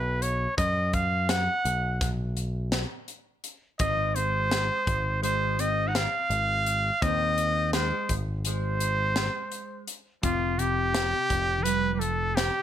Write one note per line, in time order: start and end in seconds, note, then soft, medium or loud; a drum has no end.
0.00 0.46 B1 medium
0.00 0.24 B4 medium
0.22 0.57 C#5 medium
0.22 closed hi-hat medium
0.58 1.47 F#2 medium
0.58 0.95 D#5 medium
0.58 kick medium
0.58 closed hi-hat medium
0.93 1.31 F5 medium
0.93 kick medium
0.93 closed hi-hat medium
1.29 2.10 F#5 medium
1.29 snare loud
1.29 closed hi-hat medium
1.65 2.84 B1 medium
1.65 closed hi-hat medium
2.01 kick medium
2.01 snare soft
2.01 closed hi-hat medium
2.37 closed hi-hat medium
2.72 snare medium
2.72 closed hi-hat medium
3.08 closed hi-hat medium
3.44 closed hi-hat medium
3.79 4.69 G#1 medium
3.79 4.16 C4 medium
3.79 4.17 D#5 medium
3.79 kick medium
3.79 closed hi-hat medium
4.15 5.21 G#3 medium
4.15 5.23 C5 loud
4.15 closed hi-hat medium
4.51 snare loud
4.51 closed hi-hat medium
4.87 6.06 G#1 medium
4.87 kick medium
4.87 closed hi-hat medium
5.22 5.56 G#3 medium
5.22 5.62 C5 medium
5.22 closed hi-hat medium
5.59 5.88 C4 medium
5.59 5.89 D#5 medium
5.59 closed hi-hat medium
5.88 5.95 D#4 medium
5.88 5.97 F#5 medium
5.95 7.02 C4 medium
5.95 7.04 F5 loud
5.95 snare medium
5.95 closed hi-hat medium
6.30 6.90 G#1 medium
6.30 closed hi-hat soft
6.66 closed hi-hat medium
7.02 7.91 D#2 medium
7.02 7.74 C4 medium
7.02 7.73 D#5 loud
7.02 kick loud
7.02 closed hi-hat medium
7.38 closed hi-hat medium
7.73 8.16 G#3 medium
7.73 8.15 C5 medium
7.73 snare loud
7.73 closed hi-hat medium
8.09 9.28 G#1 medium
8.09 kick medium
8.09 closed hi-hat medium
8.45 9.85 G#3 medium
8.45 9.85 C5 medium
8.45 closed hi-hat medium
8.80 closed hi-hat medium
9.16 snare medium
9.16 closed hi-hat medium
9.52 closed hi-hat soft
9.88 closed hi-hat medium
10.23 11.12 F1 medium
10.23 10.56 C3 medium
10.23 10.60 F4 medium
10.23 kick medium
10.23 closed hi-hat medium
10.59 11.64 C3 medium
10.59 11.65 G4 loud
10.59 closed hi-hat medium
10.95 snare loud
10.95 closed hi-hat medium
11.30 12.49 F1 medium
11.30 kick medium
11.30 closed hi-hat medium
11.64 11.93 G3 medium
11.64 11.94 B4 loud
11.64 closed hi-hat medium
11.94 11.99 G3 medium
11.94 12.01 B4 medium
11.99 12.35 F3 medium
11.99 12.37 A4 medium
11.99 closed hi-hat medium
12.35 12.62 C3 medium
12.35 12.62 G4 medium
12.35 snare medium
12.35 closed hi-hat medium